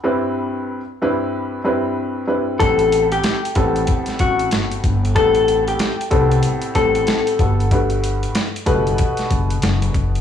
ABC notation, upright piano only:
X:1
M:4/4
L:1/8
Q:"Swing 16ths" 1/4=94
K:Ador
V:1 name="Upright piano"
[G,,G,CDEB]2 z [G,,G,CDEB]2 [G,,G,CDEB]2 [G,,G,CDEB] | [A,,G,B,CA]2 z [A,,G,B,CA]4- [A,,G,B,CA] | [A,,G,B,CA]2 z [A,,G,B,CA]2 [A,,G,B,CA]2 [G,,G,B,FA] | [G,,G,A,FB]2 z [B,,G,A,FB]4- [B,,G,A,FB] |]